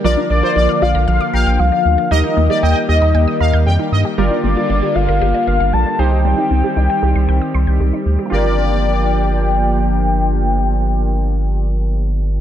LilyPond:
<<
  \new Staff \with { instrumentName = "Soft synth lead" } { \time 4/4 \key g \minor \tempo 4 = 116 d''8 d''4 f''8 f''8 g''8 f''4 | ees''4 g''8 ees''4. r4 | d''8 d''4 f''4 f''8 a''8 g''8~ | g''2.~ g''8 r8 |
g''1~ | g''1 | }
  \new Staff \with { instrumentName = "Analog polysynth" } { \time 4/4 \key g \minor d''16 r8 c''16 d''8 d''16 r8. f''8 r4 | ees''16 r8 d''16 ees''8 ees''16 r8. f''8 g''16 r16 ees''16 r16 | r1 | r1 |
d''2. r4 | r1 | }
  \new Staff \with { instrumentName = "Synth keys" } { \time 4/4 \key g \minor <d' f' bes'>1 | <ees' g' bes'>1 | <f' g' bes'>2.~ <f' g' bes'>8 <ees' g' c''>8~ | <ees' g' c''>2.~ <ees' g' c''>8 r8 |
<f' g' bes'>1~ | <f' g' bes'>1 | }
  \new Staff \with { instrumentName = "Synth arpeggio sound" } { \time 4/4 \key g \minor f16 d'16 bes16 f'16 d'16 f''16 f'16 bes''16 f''16 d'''16 bes''16 f'''16 f16 d'16 r16 f'16 | g16 ees'16 bes16 g'16 ees'16 g''16 g'16 bes''16 g''16 ees'''16 bes''16 g'''16 g16 ees'16 r16 g'16 | g16 d'16 bes16 f'16 d'16 g'16 f'16 bes'16 g'16 d''16 bes'16 f''16 g16 d'16 r16 g'16 | g16 ees'16 c'16 g'16 ees'16 g''16 g'16 c'''16 g''16 ees'''16 c'''16 g'''16 g16 ees'16 r16 g'16 |
<bes d' f' g'>1~ | <bes d' f' g'>1 | }
  \new Staff \with { instrumentName = "Analog synth pad" } { \time 4/4 \key g \minor << { <d bes f'>1 | <ees bes g'>1 | <d bes f'>2.~ <d bes f'>8 <ees c' g'>8~ | <ees c' g'>1 |
<f bes d' g'>1~ | <f bes d' g'>1 | } \\ { f1 | g1~ | g2.~ g8 g8~ | g1 |
r1 | r1 | } >> }
  \new Staff \with { instrumentName = "Analog synth bass" } { \clef bass \time 4/4 \key g \minor bes,,16 r16 bes,,16 r16 bes,,16 r16 bes,,16 bes,,16 bes,,16 r16 bes,,16 bes,,16 c,16 r16 d,16 r16 | ees,16 r16 ees,16 r16 ees,16 r16 ees,16 ees,16 ees,16 r16 ees,16 ees,16 f,16 r16 g,16 r16 | g,,16 r16 g,,16 r16 g,,16 r16 g,,16 g,,16 g,,16 r16 g,,16 g,,16 bes,,16 r16 c,8~ | c,16 r16 c,16 r16 c,16 r16 c,16 c,16 c,16 r16 c,16 c,16 c,16 r16 d,16 r16 |
g,,1~ | g,,1 | }
>>